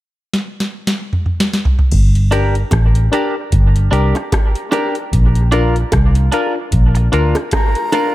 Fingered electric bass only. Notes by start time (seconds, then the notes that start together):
1.92 G1
2.72 A1
3.53 G1
3.92 C2
5.13 A#1
5.93 C2
6.73 A#1
7.13 D2